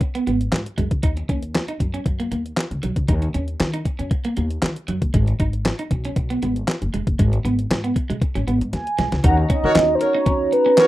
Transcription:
0.01 muted clean electric guitar stroke, kick, closed hi-hat
0.15 clean electric guitar B3, closed hi-hat
0.27 upright bass G#1, clean electric guitar B3, closed hi-hat
0.41 closed hi-hat
0.52 upright bass G#2, snare, clap, closed hi-hat
0.66 closed hi-hat
0.78 upright bass F#2, clean electric guitar G#3, kick, closed hi-hat
0.91 upright bass C#2, kick, closed hi-hat
1.03 upright bass D#2, clean electric guitar D#4, kick, closed hi-hat
1.17 muted clean electric guitar stroke, closed hi-hat
1.29 upright bass D#2, clean electric guitar C#4, kick, closed hi-hat
1.43 closed hi-hat
1.55 snare, clap, closed hi-hat
1.68 clean electric guitar D#4, closed hi-hat
1.80 upright bass F#2, muted clean electric guitar stroke, kick, closed hi-hat
1.94 clean electric guitar C#4, closed hi-hat
2.06 upright bass F#2, muted clean electric guitar stroke, kick, closed hi-hat
2.20 clean electric guitar A#3, closed hi-hat
2.32 upright bass D#2, clean electric guitar A#3, closed hi-hat
2.46 closed hi-hat
2.57 snare, clap, closed hi-hat
2.71 upright bass C#2, closed hi-hat
2.83 upright bass B1, clean electric guitar F#3, closed hi-hat
2.96 upright bass C#2, kick, closed hi-hat
3.08 upright bass D#2, clean electric guitar D#4, kick, closed hi-hat
3.22 muted clean electric guitar stroke, closed hi-hat
3.34 upright bass D#2, clean electric guitar C#4, closed hi-hat
3.48 closed hi-hat
3.60 upright bass D#3, snare, clap, closed hi-hat
3.74 clean electric guitar D#4, closed hi-hat
3.85 muted clean electric guitar stroke, kick, closed hi-hat
3.99 upright bass F#2, clean electric guitar C#4, closed hi-hat
4.11 muted clean electric guitar stroke, kick, closed hi-hat
4.25 clean electric guitar A#3, closed hi-hat
4.37 upright bass D#2, clean electric guitar A#3, closed hi-hat
4.50 closed hi-hat
4.62 upright bass D#3, snare, clap, closed hi-hat
4.76 closed hi-hat
4.88 upright bass F#2, clean electric guitar F#3, closed hi-hat
5.02 upright bass F#1, kick, closed hi-hat
5.14 upright bass G#1, clean electric guitar G#3, kick, closed hi-hat
5.27 muted clean electric guitar stroke, closed hi-hat
5.40 upright bass G#1, clean electric guitar D#4, kick, closed hi-hat
5.53 closed hi-hat
5.65 snare, clap, closed hi-hat
5.79 clean electric guitar D#4, closed hi-hat
5.91 upright bass B1, muted clean electric guitar stroke, kick, closed hi-hat
6.05 clean electric guitar C#4, closed hi-hat
6.16 upright bass B1, muted clean electric guitar stroke, kick, closed hi-hat
6.30 clean electric guitar B3, closed hi-hat
6.42 upright bass G#1, clean electric guitar B3, closed hi-hat
6.56 closed hi-hat
6.68 snare, clap, closed hi-hat
6.82 upright bass F#1, closed hi-hat
6.94 upright bass E1, clean electric guitar G#3, closed hi-hat
7.07 upright bass F#1, kick, closed hi-hat
7.19 upright bass G#1, clean electric guitar G#3, kick, closed hi-hat
7.33 muted clean electric guitar stroke, closed hi-hat
7.45 upright bass G#1, clean electric guitar B3, closed hi-hat
7.59 closed hi-hat
7.71 upright bass G#2, snare, clap, closed hi-hat
7.84 clean electric guitar B3, closed hi-hat
7.96 muted clean electric guitar stroke, kick, closed hi-hat
8.10 upright bass B1, clean electric guitar G#3, closed hi-hat
8.22 muted clean electric guitar stroke, kick, closed hi-hat
8.35 upright bass G#1, clean electric guitar C#4, closed hi-hat
8.48 upright bass G#1, clean electric guitar B3, closed hi-hat
8.61 upright bass G#2, closed hi-hat
8.73 upright bass D#2, soft synth lead G#5, snare, closed hi-hat
8.87 closed hi-hat
8.98 upright bass B1, clean electric guitar G#3, snare, closed hi-hat
9.12 upright bass C#2, snare, closed hi-hat
9.23 upright bass D#2, analog polysynth C#4 D#4 F#4 A#5, clean electric guitar D#4, soft synth lead F#5, kick, closed hi-hat
9.38 muted clean electric guitar stroke
9.50 clean electric guitar C#4, soft synth lead D#5, kick, closed hi-hat
9.63 upright bass D#3, horn section F#4 A#4 C#5
9.75 upright bass D#2, clean electric guitar C#4, snare, clap, closed hi-hat
9.95 soft synth lead C5
10.01 horn section F#4 A#4 C#5, soft synth lead C#5, muted clean electric guitar stroke, closed hi-hat
10.14 clean electric guitar D#4
10.26 upright bass D#2, clean electric guitar C#4, kick, closed hi-hat
10.52 soft synth lead B4, muted clean electric guitar stroke, closed hi-hat
10.66 clean electric guitar C#4
10.78 horn section F#4 A#4 C#5, snare, clap, closed hi-hat

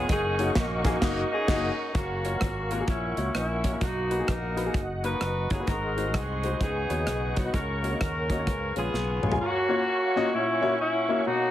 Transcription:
0.08 fingered electric bass F#1, saxophone section C#4 D#4 G#4, tonewheel organ A#4 D#5 F#5 C#6, kick, closed hi-hat
0.39 grand piano A#3 D#4 F#4 C#5, closed hi-hat
0.55 fingered electric bass A#1, saxophone section A#3 D#4 F#4, kick, snare, closed hi-hat
0.85 grand piano A#3 D#4 F#4 G#4, kick, snare, closed hi-hat
1.01 fingered electric bass F#1, grand piano A#3 D#4 F#4, kick, snare, crash
1.31 saxophone section C#4 D#4 G#4
1.48 fingered electric bass F#1, grand piano A#3 D#4 F#4 D#5, kick, snare, crash
1.93 fingered electric bass F#1, saxophone section A#3 C#4 F#4, tonewheel organ A#4 F5 F#5 C#6, kick, closed hi-hat
2.24 grand piano A#3 F4 F#4 C#5, closed hi-hat
2.33 grand piano A#3 F4 F#4 C#5
2.41 fingered electric bass G#1, kick, cross-stick, closed hi-hat
2.71 grand piano A#3 F4 F#4 A#4, closed hi-hat
2.79 grand piano A#3 F4 F#4 G#4
2.88 fingered electric bass A#1, grand piano A#2, saxophone section C#4 E4, tonewheel organ E5, kick, closed hi-hat
3.17 fingered electric bass C#2, grand piano A#3 E4 F#4 C#5, closed hi-hat
3.35 fingered electric bass A#1, saxophone section C#4 E4, cross-stick, closed hi-hat
3.64 grand piano A#3 E4 F#4 C#5, kick, closed hi-hat
3.72 grand piano A#3 E4 F#4 A#4
3.81 fingered electric bass B1, grand piano B2, saxophone section A#3 D#4 F#4, tonewheel organ F#4 D#5 F#5, kick, closed hi-hat
4.10 grand piano A#3 D#4 F#4 B4, closed hi-hat
4.18 grand piano A#3 D#4 F#4 G#4
4.28 fingered electric bass A#1, saxophone section D#4 F#4 A#4, kick, cross-stick, closed hi-hat
4.56 grand piano A#3 D#4 F#4 B4, cross-stick, closed hi-hat
4.65 grand piano A#3 D#4 F#4 G#4
4.74 fingered electric bass F#1, kick, closed hi-hat
5.03 grand piano A#3 D#4 F#4 B4, saxophone section D#4 F#4 B4, closed hi-hat
5.21 fingered electric bass F#1, cross-stick, closed hi-hat
5.50 fingered electric bass G1, grand piano A#3 D#4 F#4 C#5, saxophone section G#4, kick, closed hi-hat
5.59 grand piano A#3 D#4 F#4 B4
5.67 fingered electric bass G#1, grand piano G#2, saxophone section D#4 F#4 A#4, tonewheel organ G#4 C6, kick, closed hi-hat
5.96 grand piano G#3 D#4 F#4 C5, closed hi-hat
6.05 grand piano G#3 D#4 F#4 D#5
6.14 fingered electric bass C2, saxophone section C4 D#4 G#4, kick, cross-stick, closed hi-hat
6.43 grand piano G#3 D#4 F#4 C5, closed hi-hat
6.52 grand piano G#3 D#4 F#4 C5
6.61 fingered electric bass C#2, grand piano C#3, saxophone section B3 D#4 G#4, tonewheel organ B4 C#6, kick, closed hi-hat
6.89 fingered electric bass D#2, grand piano B3 D#4 F#4 C#5, closed hi-hat
7.07 fingered electric bass B1, cross-stick, closed hi-hat
7.35 fingered electric bass C2, grand piano B3 D#4 F#4 C#5, saxophone section F#4, kick, closed hi-hat
7.44 grand piano B3 D#4 F#4 D#5
7.53 fingered electric bass C#2, grand piano C#3, saxophone section C#4 F#4 A#4, tonewheel organ A#4 C#5 C#6, kick, closed hi-hat
7.82 grand piano A#3 C#4 F#4 C#5, closed hi-hat
7.91 grand piano A#3 C#4 F#4 D#5
8.00 fingered electric bass D#2, saxophone section C#4 F#4 A#4, kick, cross-stick, closed hi-hat
8.30 grand piano A#3 C#4 F#4 D#5, kick, closed hi-hat
8.38 grand piano A#3 C#4 F#4 C#5
8.46 fingered electric bass C#2, grand piano C#3, tonewheel organ B4 F5 G#5, kick, closed hi-hat
8.76 fingered electric bass A#1, grand piano G#3 C#4 F4 B4, saxophone section B3 F4 G#4, closed hi-hat
8.94 fingered electric bass B1, snare
9.22 fingered electric bass A#1, grand piano G#3 C#4 F4 G#4, mid tom
9.31 grand piano G#3 C#4 F4 G#4, floor tom
9.40 saxophone section A#3 C#4 F#4, tonewheel organ C#5 F5 F#5 C#6
9.68 grand piano A#3 C#4 F4 F#4 C#5
10.16 grand piano A#3 C#4 F4 F#4 D#5
10.33 grand piano A#2, saxophone section C#4 E4, tonewheel organ E5
10.61 grand piano A#3 C#4 E4 F#4 C#5
10.80 saxophone section C#4 E4
11.08 grand piano A#3 C#4 E4 F#4 C#5
11.26 grand piano B2, saxophone section A#3 D#4 F#4, tonewheel organ D#5

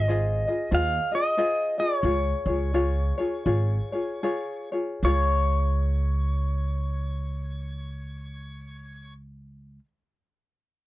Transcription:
Already playing: upright bass G#1, pedal steel guitar D#5
0.08 ukulele F4 G#4 C5 D#5
0.47 ukulele F4 G#4 D#5
0.71 upright bass D#2, ukulele F4 G#4 C5 D#5, pedal steel guitar F5
1.11 ukulele F4 G#4 D#5, pedal steel guitar D#5
1.37 ukulele F4 G#4 C5 D#5
1.78 ukulele F4 G#4 D#5, pedal steel guitar D5
1.98 pedal steel guitar C#5
2.03 upright bass C#2, ukulele F4 G#4 C#5
2.46 upright bass C#2, ukulele F4 G#4 C#5
2.74 ukulele F4 G#4 C#5
3.18 ukulele F4 G#4 C#5
3.46 upright bass G#1, ukulele F4 G#4 C#5
3.92 ukulele F4 G#4 C#5
4.23 ukulele F4 G#4 C#5
4.72 ukulele F4 G#4 C#5
5.03 upright bass C#2, ukulele F4 G#4, pedal steel guitar C#5
5.08 ukulele C#5

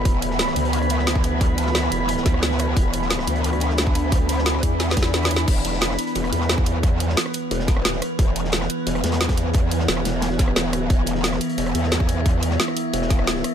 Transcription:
Already playing: synth drone E3 B3, ambient pad B5
0.05 wobble bass E1, synth drone B4, kick, closed hi-hat
0.22 closed hi-hat
0.31 snare
0.39 snare, closed hi-hat
0.47 cross-stick, snare
0.56 wobble bass D2, closed hi-hat
0.65 closed hi-hat
0.73 closed hi-hat
0.82 cross-stick, closed hi-hat
0.90 closed hi-hat
0.99 snare
1.07 snare, closed hi-hat
1.15 kick
1.24 closed hi-hat
1.41 kick, closed hi-hat
1.58 closed hi-hat
1.66 snare
1.75 snare, closed hi-hat
1.83 cross-stick
1.92 wobble bass E1, closed hi-hat
2.09 closed hi-hat
2.17 snare
2.26 wobble bass D2, kick, snare, closed hi-hat
2.34 cross-stick
2.42 snare, closed hi-hat
2.51 snare
2.59 cross-stick, closed hi-hat
2.76 wobble bass E1, synth drone D4, kick, closed hi-hat
2.94 closed hi-hat
3.02 snare
3.10 snare, closed hi-hat
3.19 cross-stick, snare
3.27 wobble bass D2, closed hi-hat
3.36 closed hi-hat
3.44 closed hi-hat
3.53 cross-stick, closed hi-hat
3.60 closed hi-hat
3.70 snare
3.78 snare, closed hi-hat
3.87 kick
3.95 closed hi-hat
4.12 kick, closed hi-hat
4.29 closed hi-hat
4.38 snare
4.46 snare, closed hi-hat
4.55 cross-stick
4.63 wobble bass E2, kick, closed hi-hat
4.80 snare, closed hi-hat
4.89 snare
4.91 snare
4.97 kick, snare, closed hi-hat
5.03 snare
5.05 snare
5.14 snare, closed hi-hat
5.23 snare, closed hi-hat
5.31 closed hi-hat
5.36 snare
5.48 wobble bass E1, synth drone E3 B3 B4, kick, closed hi-hat, crash
5.65 closed hi-hat
5.73 snare
5.81 snare, closed hi-hat
5.90 cross-stick, snare
5.99 closed hi-hat
6.07 closed hi-hat
6.15 wobble bass E1, closed hi-hat
6.24 cross-stick, closed hi-hat
6.32 wobble bass E2, closed hi-hat
6.41 snare
6.49 snare, closed hi-hat
6.58 kick
6.66 closed hi-hat
6.83 kick, closed hi-hat
7.00 closed hi-hat
7.09 snare
7.17 snare, closed hi-hat
7.26 cross-stick
7.34 closed hi-hat
7.51 wobble bass E1, closed hi-hat
7.60 snare
7.68 kick, snare, closed hi-hat
7.77 cross-stick
7.85 snare, closed hi-hat
7.93 snare
8.02 cross-stick, closed hi-hat
8.19 wobble bass E1, kick, closed hi-hat
8.36 closed hi-hat
8.45 snare
8.52 snare, closed hi-hat
8.61 cross-stick, snare
8.70 closed hi-hat
8.87 wobble bass E1, closed hi-hat
8.95 cross-stick
9.04 wobble bass E2, snare, closed hi-hat
9.12 snare, closed hi-hat
9.21 snare, closed hi-hat
9.28 kick, snare, closed hi-hat
9.37 closed hi-hat
9.54 kick, closed hi-hat
9.71 closed hi-hat
9.79 snare
9.88 wobble bass E1, snare, closed hi-hat
9.97 cross-stick
10.05 wobble bass E1, snare, closed hi-hat
10.22 snare, closed hi-hat
10.31 snare
10.39 kick, snare, closed hi-hat
10.48 cross-stick
10.56 snare, closed hi-hat
10.64 wobble bass D#1
10.73 cross-stick, closed hi-hat
10.90 wobble bass E1, synth drone E5, kick, closed hi-hat
11.07 closed hi-hat
11.15 snare
11.24 snare, closed hi-hat
11.32 cross-stick, snare
11.41 closed hi-hat
11.49 closed hi-hat
11.58 wobble bass E1, closed hi-hat
11.66 cross-stick, closed hi-hat
11.75 wobble bass E2, closed hi-hat
11.84 snare
11.92 snare, closed hi-hat
12.00 kick
12.09 closed hi-hat
12.26 kick, closed hi-hat
12.43 closed hi-hat
12.50 snare
12.60 snare, closed hi-hat
12.68 cross-stick
12.77 closed hi-hat
12.93 wobble bass E1, closed hi-hat
13.02 snare
13.10 kick, snare, closed hi-hat
13.19 cross-stick
13.27 snare, closed hi-hat
13.36 snare
13.44 cross-stick, closed hi-hat

